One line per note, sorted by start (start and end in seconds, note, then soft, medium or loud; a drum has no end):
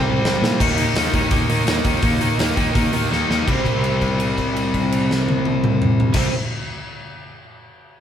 0.00 0.16 C2 medium
0.00 0.58 C3 loud
0.00 0.59 G3 loud
0.00 0.60 C4 loud
0.24 0.38 C2 medium
0.24 snare loud
0.42 0.56 A#2 medium
0.42 snare loud
0.60 0.85 D#2 medium
0.60 0.77 D#3 medium
0.60 0.78 A#3 medium
0.60 0.78 D#4 loud
0.60 kick loud
0.60 crash loud
0.77 0.95 D#3 medium
0.77 0.96 A#3 medium
0.77 0.96 D#4 medium
0.77 open hi-hat medium
0.94 1.07 D#2 medium
0.94 1.13 D#3 medium
0.94 1.13 A#3 medium
0.94 1.14 D#4 medium
0.94 snare loud
0.94 open hi-hat medium
1.13 1.26 D#2 medium
1.13 1.30 D#3 loud
1.13 1.30 A#3 loud
1.13 1.32 D#4 loud
1.13 kick medium
1.13 open hi-hat medium
1.31 1.44 D#2 medium
1.31 1.48 D#3 medium
1.31 1.49 A#3 medium
1.31 1.50 D#4 medium
1.31 kick loud
1.31 open hi-hat medium
1.49 1.61 D#2 medium
1.49 1.66 D#3 medium
1.49 1.66 A#3 loud
1.49 1.68 D#4 medium
1.49 open hi-hat medium
1.66 1.79 D#2 medium
1.66 1.83 D#3 medium
1.66 1.84 A#3 medium
1.66 1.85 D#4 loud
1.66 snare loud
1.66 open hi-hat medium
1.84 1.97 D#2 medium
1.84 2.01 D#3 medium
1.84 2.02 A#3 medium
1.84 2.02 D#4 loud
1.84 kick medium
1.84 open hi-hat medium
2.02 2.28 D#2 medium
2.02 2.20 D#3 medium
2.02 2.20 A#3 loud
2.02 2.21 D#4 loud
2.02 kick loud
2.02 open hi-hat medium
2.21 2.38 D#3 medium
2.21 2.39 A#3 medium
2.21 2.39 D#4 medium
2.21 open hi-hat medium
2.38 2.51 D#2 medium
2.38 2.56 D#3 medium
2.38 2.57 A#3 medium
2.38 2.57 D#4 loud
2.38 snare loud
2.38 open hi-hat medium
2.57 2.70 D#2 medium
2.57 2.73 D#3 medium
2.57 2.73 A#3 loud
2.57 2.74 D#4 medium
2.57 kick medium
2.57 open hi-hat medium
2.74 2.88 D#2 medium
2.74 2.92 D#3 medium
2.74 2.92 A#3 medium
2.74 2.93 D#4 medium
2.74 kick loud
2.74 open hi-hat medium
2.93 3.06 D#2 medium
2.93 3.10 D#3 medium
2.93 3.10 A#3 medium
2.93 3.11 D#4 medium
2.93 open hi-hat medium
3.10 3.23 D#2 medium
3.10 3.28 D#3 medium
3.10 3.28 A#3 medium
3.10 3.29 D#4 medium
3.10 snare medium
3.29 3.42 D#2 medium
3.29 3.45 D#3 medium
3.29 3.47 A#3 medium
3.29 3.47 D#4 medium
3.29 snare medium
3.46 6.06 C2 medium
3.46 6.13 C3 medium
3.46 6.16 G3 medium
3.46 kick medium
3.46 crash medium
3.50 6.17 C4 loud
3.66 kick medium
3.66 crash soft
3.84 crash soft
4.02 kick medium
4.02 crash soft
4.20 crash soft
4.38 kick medium
4.38 crash soft
4.56 crash soft
4.74 kick medium
4.74 crash soft
4.92 crash medium
5.11 snare medium
5.28 high tom medium
5.45 high tom medium
5.64 mid tom medium
5.82 mid tom medium
6.00 floor tom medium
6.14 6.30 C2 medium
6.14 6.30 C3 medium
6.14 6.32 G3 medium
6.14 6.32 C4 loud
6.14 kick loud
6.14 snare medium
6.14 crash loud